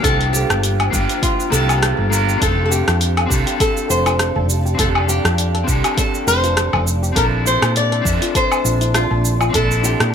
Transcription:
Already playing: G4 C5 F5 G5
0.00 C2 A#3 D4, kick
0.04 F4 G4 A4, open hi-hat, cabasa
0.21 open hi-hat
0.33 G4, cabasa
0.50 G1, cross-stick, open hi-hat, cabasa
0.63 open hi-hat, cabasa
0.80 open hi-hat, low woodblock
0.91 G1 A#3 D4 F4 G4, kick, cabasa
1.09 open hi-hat, cabasa
1.23 F4, kick, open hi-hat, cabasa
1.40 cabasa
1.50 C2 A#3 D4 F4 A4, cabasa
1.54 G4
1.69 open hi-hat, cabasa, low woodblock
1.83 cross-stick, open hi-hat, cabasa
1.99 G1
2.10 A#3 D4 F4, cabasa
2.14 A#4
2.29 cabasa
2.38 F1 C4 D4 A4 D5 A5, kick
2.42 G4 A4, open hi-hat, cabasa
2.66 A4
2.71 G4, cabasa
2.87 F2 F4, cross-stick, open hi-hat, cabasa
3.01 open hi-hat, cabasa
3.17 A4, open hi-hat, low woodblock
3.26 C4 D4
3.30 C2 G4 A4, kick, cabasa
3.47 G4, open hi-hat, cabasa
3.60 A4, kick, open hi-hat, cabasa
3.77 cabasa
3.90 F1 G4 C5, cabasa
4.06 F4, open hi-hat, cabasa, low woodblock
4.19 cross-stick, open hi-hat, cabasa
4.36 F1 A4
4.50 cabasa
4.65 G4, cabasa
4.75 F1 C4 D4 A4
4.79 G4 A4, kick, open hi-hat, cabasa
4.95 low woodblock
5.08 G4, cabasa
5.25 F2 F4, cross-stick, open hi-hat, cabasa
5.38 open hi-hat, cabasa
5.55 A4, open hi-hat
5.64 C2 C4 D4, kick
5.68 G4 A4, cabasa
5.84 G4, open hi-hat, cabasa, low woodblock
5.97 A4, kick, open hi-hat, cabasa
6.15 cabasa
6.27 F1 G4 C5, cabasa
6.44 F4, open hi-hat, cabasa
6.57 cross-stick, open hi-hat, cabasa
6.73 F1 A4, low woodblock
6.87 cabasa
7.03 G4, cabasa
7.13 A#1 C4 D4 A4 D5 E5 A5 C6, kick, open hi-hat
7.17 E4 A4 A#4, cabasa
7.46 F4 C5, cabasa
7.62 A#2 E4, cross-stick, open hi-hat, cabasa, low woodblock
7.76 D5, open hi-hat, cabasa
7.92 A4, open hi-hat
8.02 F2 C4 D4, kick
8.06 A4 E5, cabasa
8.22 F4, open hi-hat, cabasa
8.35 A4 C5, kick, open hi-hat, cabasa
8.52 cabasa, low woodblock
8.65 A#1 F4, cabasa
8.81 E4, open hi-hat, cabasa
8.94 F4, cross-stick, open hi-hat, cabasa
9.11 A#1 A4
9.25 cabasa
9.41 F4, cabasa, low woodblock
9.50 C4 D4 A4
9.54 A#1 E4 A4, kick, open hi-hat, cabasa
9.71 cabasa
9.83 F4 G4, cabasa
10.00 A#2 E4, cross-stick, open hi-hat, cabasa

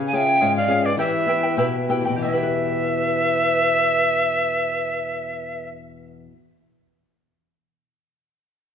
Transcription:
Already playing: C#3 G#4 C#5 F5
0.07 F5 G#5
0.13 C#4 F4 G#4 C#5 E5 F5 G5
0.27 C#5 F5
0.40 G#2 G#4 C#5 F5
0.57 D5 F5
0.68 C#4 F4 G#4 C#5 F5
0.84 B4 C#5 D5 F5
0.97 E3 E4 G4 B4 E5 G5
1.26 B3 E4 G4 B4 E5 G5
1.43 E4 B4 G5
1.57 B2 E4 G4 B4 E5 G5
1.89 B3 E4 G4 B4 E5 G5
2.01 E2
2.05 B2 E4 B4 G5
2.16 E3 G4
2.22 B4 D#5 E5
2.26 B3 E4
2.33 G4 B4 E5
2.38 G5
2.43 B4

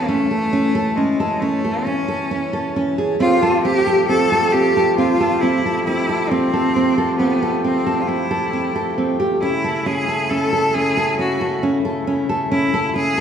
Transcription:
Already playing: E3 C#4 A5
0.06 A3 C#4
0.31 A4
0.53 C#4
0.75 A4
0.96 G#3 C#4
1.20 A4
1.41 A3 C#4
1.65 A4
1.85 C#4
2.08 A4
2.31 C#4
2.53 A4
2.76 C#4
2.98 G#4
3.20 F3 A3 C4 F4 G4
3.43 A4
3.63 C4 G4
3.87 A4
4.08 C4 A4
4.32 A4
4.52 C4 G4
4.77 A4
4.97 C4 F4
5.21 A4
5.41 C4 E4
5.66 A4
5.85 C4 E4
6.09 A4
6.30 C4
6.54 A4
6.76 C4
6.98 A4
7.18 B3 C4
7.42 A4
7.63 C4
7.87 A4
8.01 F4
8.06 C4 E4
8.31 A4
8.53 C4
8.76 A4
8.98 C4
9.20 G4
9.41 C#3 C#4 E4
9.64 A4
9.86 C#4 G#4
10.08 A4
10.30 C#4 A4
10.53 A4
10.74 C#4 G#4
10.97 A4
11.19 C#4 F#4
11.41 A4
11.63 C#4
11.85 A4
12.07 C#4
12.29 A4
12.52 C#4 E4
12.74 A4
12.96 C#4 G#4

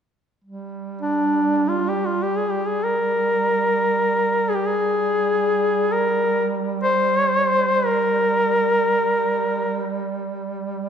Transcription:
0.44 G3
1.01 D4
1.68 F4
1.89 G4
2.06 F4
2.23 G4
2.36 G#4
2.51 G4
2.66 G#4
2.84 A#4
4.49 G#4
4.55 G4
4.66 G#4
5.92 A#4
6.83 C5
7.86 A#4

